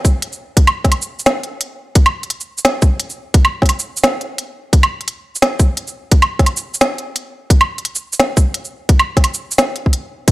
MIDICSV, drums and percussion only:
0, 0, Header, 1, 2, 480
1, 0, Start_track
1, 0, Tempo, 346821
1, 782, Time_signature, 4, 2, 24, 8
1, 14279, End_track
2, 0, Start_track
2, 0, Title_t, "Drums"
2, 65, Note_on_c, 9, 36, 103
2, 70, Note_on_c, 9, 42, 39
2, 70, Note_on_c, 9, 82, 66
2, 203, Note_off_c, 9, 36, 0
2, 209, Note_off_c, 9, 42, 0
2, 209, Note_off_c, 9, 82, 0
2, 309, Note_on_c, 9, 42, 67
2, 447, Note_off_c, 9, 42, 0
2, 452, Note_on_c, 9, 82, 38
2, 590, Note_off_c, 9, 82, 0
2, 785, Note_on_c, 9, 36, 126
2, 786, Note_on_c, 9, 42, 84
2, 923, Note_off_c, 9, 36, 0
2, 925, Note_off_c, 9, 42, 0
2, 933, Note_on_c, 9, 42, 40
2, 933, Note_on_c, 9, 77, 80
2, 1071, Note_off_c, 9, 42, 0
2, 1071, Note_off_c, 9, 77, 0
2, 1169, Note_on_c, 9, 36, 67
2, 1172, Note_on_c, 9, 38, 38
2, 1172, Note_on_c, 9, 42, 40
2, 1268, Note_off_c, 9, 42, 0
2, 1268, Note_on_c, 9, 42, 70
2, 1268, Note_on_c, 9, 77, 39
2, 1308, Note_off_c, 9, 36, 0
2, 1310, Note_off_c, 9, 38, 0
2, 1407, Note_off_c, 9, 42, 0
2, 1407, Note_off_c, 9, 77, 0
2, 1411, Note_on_c, 9, 82, 66
2, 1549, Note_off_c, 9, 82, 0
2, 1652, Note_on_c, 9, 82, 61
2, 1747, Note_off_c, 9, 82, 0
2, 1747, Note_on_c, 9, 38, 125
2, 1747, Note_on_c, 9, 42, 82
2, 1747, Note_on_c, 9, 82, 35
2, 1885, Note_off_c, 9, 38, 0
2, 1885, Note_off_c, 9, 42, 0
2, 1885, Note_off_c, 9, 82, 0
2, 1985, Note_on_c, 9, 42, 37
2, 2124, Note_off_c, 9, 42, 0
2, 2224, Note_on_c, 9, 42, 68
2, 2362, Note_off_c, 9, 42, 0
2, 2704, Note_on_c, 9, 42, 82
2, 2705, Note_on_c, 9, 36, 127
2, 2842, Note_off_c, 9, 42, 0
2, 2844, Note_off_c, 9, 36, 0
2, 2850, Note_on_c, 9, 42, 39
2, 2850, Note_on_c, 9, 77, 79
2, 2988, Note_off_c, 9, 42, 0
2, 2988, Note_off_c, 9, 77, 0
2, 3090, Note_on_c, 9, 42, 39
2, 3185, Note_off_c, 9, 42, 0
2, 3185, Note_on_c, 9, 42, 70
2, 3323, Note_off_c, 9, 42, 0
2, 3332, Note_on_c, 9, 82, 64
2, 3470, Note_off_c, 9, 82, 0
2, 3570, Note_on_c, 9, 82, 63
2, 3664, Note_on_c, 9, 38, 126
2, 3664, Note_on_c, 9, 42, 84
2, 3708, Note_off_c, 9, 82, 0
2, 3803, Note_off_c, 9, 38, 0
2, 3803, Note_off_c, 9, 42, 0
2, 3904, Note_on_c, 9, 42, 38
2, 3904, Note_on_c, 9, 82, 64
2, 3905, Note_on_c, 9, 36, 110
2, 4043, Note_off_c, 9, 42, 0
2, 4043, Note_off_c, 9, 82, 0
2, 4044, Note_off_c, 9, 36, 0
2, 4146, Note_on_c, 9, 42, 66
2, 4284, Note_off_c, 9, 42, 0
2, 4288, Note_on_c, 9, 82, 36
2, 4427, Note_off_c, 9, 82, 0
2, 4625, Note_on_c, 9, 36, 127
2, 4625, Note_on_c, 9, 42, 82
2, 4763, Note_off_c, 9, 36, 0
2, 4764, Note_off_c, 9, 42, 0
2, 4771, Note_on_c, 9, 42, 38
2, 4771, Note_on_c, 9, 77, 78
2, 4909, Note_off_c, 9, 42, 0
2, 4909, Note_off_c, 9, 77, 0
2, 5009, Note_on_c, 9, 36, 67
2, 5010, Note_on_c, 9, 38, 40
2, 5060, Note_on_c, 9, 42, 38
2, 5107, Note_off_c, 9, 42, 0
2, 5107, Note_on_c, 9, 42, 68
2, 5107, Note_on_c, 9, 77, 37
2, 5148, Note_off_c, 9, 36, 0
2, 5149, Note_off_c, 9, 38, 0
2, 5245, Note_off_c, 9, 42, 0
2, 5245, Note_off_c, 9, 77, 0
2, 5252, Note_on_c, 9, 82, 68
2, 5391, Note_off_c, 9, 82, 0
2, 5491, Note_on_c, 9, 82, 66
2, 5585, Note_on_c, 9, 38, 127
2, 5585, Note_on_c, 9, 42, 79
2, 5629, Note_off_c, 9, 82, 0
2, 5723, Note_off_c, 9, 38, 0
2, 5723, Note_off_c, 9, 42, 0
2, 5827, Note_on_c, 9, 42, 36
2, 5966, Note_off_c, 9, 42, 0
2, 6067, Note_on_c, 9, 42, 64
2, 6205, Note_off_c, 9, 42, 0
2, 6545, Note_on_c, 9, 36, 122
2, 6546, Note_on_c, 9, 42, 77
2, 6683, Note_off_c, 9, 36, 0
2, 6685, Note_off_c, 9, 42, 0
2, 6687, Note_on_c, 9, 42, 36
2, 6687, Note_on_c, 9, 77, 79
2, 6826, Note_off_c, 9, 42, 0
2, 6826, Note_off_c, 9, 77, 0
2, 6930, Note_on_c, 9, 42, 36
2, 7027, Note_off_c, 9, 42, 0
2, 7027, Note_on_c, 9, 42, 66
2, 7165, Note_off_c, 9, 42, 0
2, 7411, Note_on_c, 9, 82, 64
2, 7505, Note_on_c, 9, 38, 117
2, 7505, Note_on_c, 9, 42, 75
2, 7549, Note_off_c, 9, 82, 0
2, 7643, Note_off_c, 9, 38, 0
2, 7643, Note_off_c, 9, 42, 0
2, 7744, Note_on_c, 9, 36, 105
2, 7746, Note_on_c, 9, 42, 35
2, 7746, Note_on_c, 9, 82, 65
2, 7882, Note_off_c, 9, 36, 0
2, 7884, Note_off_c, 9, 42, 0
2, 7884, Note_off_c, 9, 82, 0
2, 7987, Note_on_c, 9, 42, 63
2, 8125, Note_off_c, 9, 42, 0
2, 8131, Note_on_c, 9, 82, 39
2, 8269, Note_off_c, 9, 82, 0
2, 8463, Note_on_c, 9, 42, 79
2, 8465, Note_on_c, 9, 36, 118
2, 8602, Note_off_c, 9, 42, 0
2, 8603, Note_off_c, 9, 36, 0
2, 8611, Note_on_c, 9, 42, 36
2, 8611, Note_on_c, 9, 77, 80
2, 8750, Note_off_c, 9, 42, 0
2, 8750, Note_off_c, 9, 77, 0
2, 8849, Note_on_c, 9, 36, 62
2, 8850, Note_on_c, 9, 38, 37
2, 8850, Note_on_c, 9, 42, 37
2, 8946, Note_off_c, 9, 42, 0
2, 8946, Note_on_c, 9, 42, 65
2, 8946, Note_on_c, 9, 77, 38
2, 8987, Note_off_c, 9, 36, 0
2, 8988, Note_off_c, 9, 38, 0
2, 9084, Note_off_c, 9, 42, 0
2, 9084, Note_off_c, 9, 77, 0
2, 9089, Note_on_c, 9, 82, 71
2, 9228, Note_off_c, 9, 82, 0
2, 9330, Note_on_c, 9, 82, 67
2, 9426, Note_off_c, 9, 82, 0
2, 9426, Note_on_c, 9, 38, 120
2, 9426, Note_on_c, 9, 42, 78
2, 9426, Note_on_c, 9, 82, 40
2, 9565, Note_off_c, 9, 38, 0
2, 9565, Note_off_c, 9, 42, 0
2, 9565, Note_off_c, 9, 82, 0
2, 9665, Note_on_c, 9, 42, 34
2, 9804, Note_off_c, 9, 42, 0
2, 9906, Note_on_c, 9, 42, 63
2, 10044, Note_off_c, 9, 42, 0
2, 10382, Note_on_c, 9, 36, 114
2, 10385, Note_on_c, 9, 42, 81
2, 10520, Note_off_c, 9, 36, 0
2, 10524, Note_off_c, 9, 42, 0
2, 10529, Note_on_c, 9, 42, 37
2, 10529, Note_on_c, 9, 77, 81
2, 10668, Note_off_c, 9, 42, 0
2, 10668, Note_off_c, 9, 77, 0
2, 10770, Note_on_c, 9, 42, 38
2, 10864, Note_off_c, 9, 42, 0
2, 10864, Note_on_c, 9, 42, 66
2, 11003, Note_off_c, 9, 42, 0
2, 11008, Note_on_c, 9, 82, 70
2, 11146, Note_off_c, 9, 82, 0
2, 11248, Note_on_c, 9, 82, 68
2, 11342, Note_on_c, 9, 38, 114
2, 11342, Note_on_c, 9, 42, 77
2, 11387, Note_off_c, 9, 82, 0
2, 11481, Note_off_c, 9, 38, 0
2, 11481, Note_off_c, 9, 42, 0
2, 11583, Note_on_c, 9, 36, 103
2, 11584, Note_on_c, 9, 42, 35
2, 11584, Note_on_c, 9, 82, 70
2, 11721, Note_off_c, 9, 36, 0
2, 11722, Note_off_c, 9, 42, 0
2, 11722, Note_off_c, 9, 82, 0
2, 11824, Note_on_c, 9, 42, 64
2, 11962, Note_off_c, 9, 42, 0
2, 11969, Note_on_c, 9, 82, 40
2, 12108, Note_off_c, 9, 82, 0
2, 12304, Note_on_c, 9, 36, 119
2, 12305, Note_on_c, 9, 42, 86
2, 12442, Note_off_c, 9, 36, 0
2, 12443, Note_off_c, 9, 42, 0
2, 12449, Note_on_c, 9, 42, 39
2, 12449, Note_on_c, 9, 77, 84
2, 12587, Note_off_c, 9, 42, 0
2, 12587, Note_off_c, 9, 77, 0
2, 12688, Note_on_c, 9, 36, 61
2, 12689, Note_on_c, 9, 38, 37
2, 12689, Note_on_c, 9, 42, 40
2, 12787, Note_off_c, 9, 42, 0
2, 12787, Note_on_c, 9, 42, 71
2, 12787, Note_on_c, 9, 77, 41
2, 12826, Note_off_c, 9, 36, 0
2, 12827, Note_off_c, 9, 38, 0
2, 12925, Note_off_c, 9, 42, 0
2, 12925, Note_off_c, 9, 77, 0
2, 12928, Note_on_c, 9, 82, 68
2, 13067, Note_off_c, 9, 82, 0
2, 13167, Note_on_c, 9, 82, 67
2, 13263, Note_off_c, 9, 82, 0
2, 13263, Note_on_c, 9, 38, 119
2, 13263, Note_on_c, 9, 42, 81
2, 13263, Note_on_c, 9, 82, 40
2, 13401, Note_off_c, 9, 38, 0
2, 13401, Note_off_c, 9, 42, 0
2, 13401, Note_off_c, 9, 82, 0
2, 13503, Note_on_c, 9, 42, 37
2, 13642, Note_off_c, 9, 42, 0
2, 13647, Note_on_c, 9, 36, 61
2, 13743, Note_on_c, 9, 42, 67
2, 13786, Note_off_c, 9, 36, 0
2, 13881, Note_off_c, 9, 42, 0
2, 14223, Note_on_c, 9, 36, 123
2, 14223, Note_on_c, 9, 42, 86
2, 14279, Note_off_c, 9, 36, 0
2, 14279, Note_off_c, 9, 42, 0
2, 14279, End_track
0, 0, End_of_file